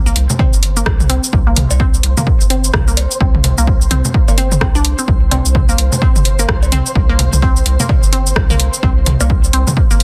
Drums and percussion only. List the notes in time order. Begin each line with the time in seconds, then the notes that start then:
0.06 cabasa
0.16 closed hi-hat
0.30 low conga, cabasa
0.39 kick, high tom, cowbell
0.53 cabasa
0.63 closed hi-hat
0.77 cabasa
0.86 kick, cross-stick
1.00 high tom, cabasa
1.10 closed hi-hat
1.24 cabasa
1.33 kick
1.56 closed hi-hat, high tom, low conga
1.71 cowbell, cabasa
1.80 kick
1.94 cabasa
2.03 closed hi-hat
2.17 high tom, low conga, cabasa
2.27 kick
2.41 cabasa
2.50 closed hi-hat
2.64 cabasa
2.74 kick, cross-stick, high tom
2.88 cabasa
2.97 closed hi-hat, cowbell
3.11 cabasa
3.21 kick
3.35 high tom
3.44 closed hi-hat, low conga
3.58 cabasa
3.67 kick
3.82 cabasa
3.91 closed hi-hat, high tom
4.05 low conga, cabasa
4.14 kick
4.28 cowbell, cabasa
4.38 closed hi-hat
4.52 high tom, cabasa
4.61 kick, cross-stick
4.75 cabasa
4.85 closed hi-hat
4.99 cabasa
5.08 kick
5.31 closed hi-hat, cowbell, low conga
5.46 cabasa
5.55 kick, high tom
5.69 cabasa
5.78 closed hi-hat
5.92 low conga, cabasa
6.02 kick
6.16 high tom, cabasa
6.25 closed hi-hat
6.39 cabasa
6.49 kick, cross-stick
6.63 cowbell, cabasa
6.72 closed hi-hat, high tom
6.86 cabasa
6.96 kick
7.19 closed hi-hat, low conga
7.33 high tom, cabasa
7.42 kick
7.56 cabasa
7.66 closed hi-hat
7.80 low conga, cabasa
7.89 kick, high tom, cowbell
8.03 cabasa
8.13 closed hi-hat
8.27 cabasa
8.36 kick, cross-stick
8.50 high tom, cabasa
8.60 closed hi-hat
8.74 cabasa
8.83 kick
9.06 closed hi-hat, high tom, low conga
9.20 cowbell, cabasa
9.30 kick
9.44 cabasa
9.53 closed hi-hat
9.67 high tom, low conga, cabasa
9.77 kick
9.91 cabasa
10.00 closed hi-hat